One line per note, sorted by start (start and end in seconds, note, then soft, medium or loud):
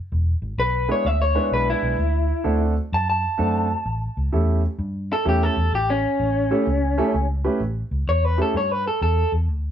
0.12 0.33 E1 medium
0.42 0.53 G#1 medium
0.58 0.90 B1 medium
0.58 0.89 B4 loud
0.89 1.03 G#3 medium
0.89 1.03 B3 medium
0.89 1.03 D4 medium
0.89 1.03 E4 medium
0.89 1.03 G#4 medium
0.89 1.06 C#5 medium
1.05 1.37 D2 medium
1.05 1.21 E5 medium
1.22 1.51 C#5 medium
1.35 1.95 G#3 medium
1.35 1.95 B3 medium
1.35 1.95 D4 medium
1.35 1.95 E4 medium
1.35 1.95 B4 medium
1.52 1.73 B1 medium
1.52 1.68 B4 medium
1.70 2.59 E4 medium
1.83 1.94 B1 medium
1.98 2.31 D2 medium
2.44 2.77 D2 medium
2.44 2.72 A3 medium
2.44 2.73 C4 medium
2.44 2.72 D4 medium
2.44 2.73 F#4 medium
2.44 2.73 A4 medium
2.92 3.25 F#2 medium
2.92 3.08 A5 medium
3.10 4.45 A5 loud
3.38 3.71 F#2 medium
3.38 3.66 A3 medium
3.38 3.66 C4 medium
3.38 3.66 D4 medium
3.38 3.67 F#4 medium
3.38 3.67 A4 medium
3.86 4.07 A1 medium
4.17 4.28 C#2 medium
4.32 4.65 E2 medium
4.32 4.60 A3 medium
4.32 4.60 C#4 soft
4.32 4.60 E4 medium
4.32 4.60 G4 medium
4.32 4.60 A4 medium
4.79 5.11 G2 medium
5.13 5.27 A4 loud
5.25 5.47 E2 medium
5.25 5.53 A3 medium
5.25 5.53 C#4 medium
5.25 5.53 E4 medium
5.25 5.54 G4 medium
5.25 5.43 G4 medium
5.25 5.54 A4 medium
5.43 5.73 A4 medium
5.57 5.68 E2 medium
5.72 6.05 A1 medium
5.72 5.89 G4 medium
5.90 7.26 C#4 loud
6.20 6.52 A1 medium
6.51 6.65 A3 medium
6.51 6.65 C#4 medium
6.51 6.65 E4 medium
6.51 6.65 G4 medium
6.51 6.65 A4 medium
6.67 6.99 C#2 medium
6.98 7.12 A3 medium
6.98 7.12 C#4 medium
6.98 7.12 E4 medium
6.98 7.12 G4 medium
6.98 7.12 A4 medium
7.14 7.46 C#2 medium
7.44 7.59 A3 medium
7.44 7.59 C#4 medium
7.44 7.59 E4 medium
7.44 7.59 G4 medium
7.44 7.59 B4 medium
7.60 7.82 A1 medium
7.91 8.02 C#2 medium
8.07 8.40 E2 medium
8.07 8.25 C#5 medium
8.25 8.39 B4 medium
8.38 8.52 A3 medium
8.38 8.52 C#4 medium
8.38 8.53 E4 medium
8.38 8.53 G4 medium
8.38 8.53 A4 medium
8.42 8.55 A4 medium
8.54 8.87 G2 medium
8.54 8.71 C#5 medium
8.71 8.86 B4 medium
8.87 9.01 A4 medium
9.02 9.23 E2 medium
9.02 9.32 A4 medium
9.32 9.48 E2 medium
9.48 9.71 D2 medium